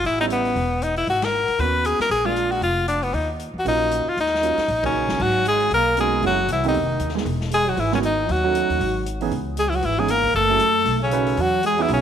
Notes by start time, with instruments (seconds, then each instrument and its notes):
0.04 upright bass A1, tenor saxophone E4, open hi-hat
0.20 grand piano G3 B3 C#4 E4, tenor saxophone D#4
0.30 tenor saxophone B3, closed hi-hat
0.45 open hi-hat
0.56 upright bass E1, open hi-hat
0.82 tenor saxophone D#4, closed hi-hat
0.96 tenor saxophone E4, open hi-hat
1.07 upright bass G#1, tenor saxophone F#4, open hi-hat
1.22 tenor saxophone A#4, snare, ride
1.48 muted upright bass stroke, open hi-hat
1.58 upright bass D#2, grand piano A#3 B3 C#4 F#4, tenor saxophone B4, open hi-hat
1.84 tenor saxophone G#4, closed hi-hat
1.99 tenor saxophone A#4, muted upright bass stroke, snare, open hi-hat
2.10 upright bass A#1, tenor saxophone G#4, open hi-hat
2.25 grand piano G#3 A#3 D4 F4, tenor saxophone F4
2.36 closed hi-hat
2.51 tenor saxophone F#4, open hi-hat
2.61 upright bass F1, tenor saxophone F4, open hi-hat
2.88 tenor saxophone D4, closed hi-hat
3.03 tenor saxophone B3, open hi-hat
3.13 upright bass D#2, tenor saxophone D#4, open hi-hat
3.40 closed hi-hat
3.54 upright bass E2
3.59 tenor saxophone F#4
3.65 upright bass A#1, grand piano F#3 A#3 C#4 F4, tenor saxophone D#4, open hi-hat
3.91 closed hi-hat
4.09 tenor saxophone F4
4.17 upright bass D#2, tenor saxophone D#4, open hi-hat
4.26 snare
4.35 snare
4.43 grand piano F#3 A#3 C#4 F4, closed hi-hat
4.57 muted upright bass stroke, snare, open hi-hat
4.68 upright bass A#1, open hi-hat
4.83 trombone C#3, grand piano F#3 A#3 C#4 D#4, tenor saxophone C#4, kick, ride
5.08 upright bass G1, snare
5.20 upright bass G#1, trombone F#3, tenor saxophone F#4, kick, crash
5.45 trombone G#3, tenor saxophone G#4, closed hi-hat
5.60 open hi-hat
5.70 upright bass B1, trombone A#3, tenor saxophone A#4, open hi-hat
5.97 trombone G#3, grand piano A#3 B3 C#4 D#4 F#4, tenor saxophone G#4, closed hi-hat
6.22 upright bass F#1, trombone F#3, grand piano G#3 A3 C#4 E4 F#4, open hi-hat
6.27 tenor saxophone F#4
6.48 upright bass C2, trombone E3, closed hi-hat
6.52 tenor saxophone E4
6.63 trombone D#3, grand piano A3 B3 C4 D#4 G4, open hi-hat
6.68 tenor saxophone D#4
6.74 upright bass F1, open hi-hat
6.99 upright bass D#2, closed hi-hat
7.09 snare
7.15 grand piano G#3 A#3 B3 D#4 G#4, snare
7.25 upright bass E1, open hi-hat
7.41 snare
7.51 trombone G#3, tenor saxophone G#4, closed hi-hat
7.66 trombone F#3, tenor saxophone F#4, open hi-hat
7.77 upright bass G#1, trombone E3, tenor saxophone E4, open hi-hat
7.92 trombone C#3, grand piano G#3 A#3 B3 D#4 F#4, tenor saxophone C#4, snare
8.03 trombone D#3, tenor saxophone D#4, closed hi-hat
8.29 upright bass D#2, trombone F#3, tenor saxophone F#4, open hi-hat
8.44 grand piano F#3 A3 C#4 D#4 F#4
8.55 closed hi-hat
8.69 upright bass D#2, open hi-hat
8.80 upright bass G#1, open hi-hat
9.06 closed hi-hat
9.21 grand piano E3 B3 C#4 D#4 G#4, open hi-hat
9.31 upright bass C#2, open hi-hat
9.57 trombone G#3, tenor saxophone G#4, closed hi-hat
9.67 trombone E3, tenor saxophone E4
9.72 trombone F#3, tenor saxophone F#4, open hi-hat
9.82 upright bass G#1, trombone E3, tenor saxophone E4, open hi-hat
9.98 grand piano E3 B3 C#4 D#4 G#4, trombone G#3, tenor saxophone G#4
10.08 trombone A#3, tenor saxophone A#4, closed hi-hat
10.23 kick, open hi-hat
10.34 upright bass F#1, trombone A3, tenor saxophone A4, open hi-hat
10.49 grand piano F#3 A3 C#4 E4 G#4
10.59 upright bass F#2, closed hi-hat
10.85 upright bass B1, open hi-hat
11.02 trombone C#3, tenor saxophone C#4
11.11 grand piano F#3 A3 C#4 D#4 B4, closed hi-hat
11.27 open hi-hat
11.37 upright bass E2, trombone F#3, open hi-hat
11.41 tenor saxophone F#4
11.63 trombone G#3, tenor saxophone G#4, closed hi-hat
11.78 trombone E3, grand piano F#3 B3 D#4 E4 G#4, open hi-hat
11.82 tenor saxophone E4
11.88 upright bass B1, trombone C#3, open hi-hat
11.93 tenor saxophone C#4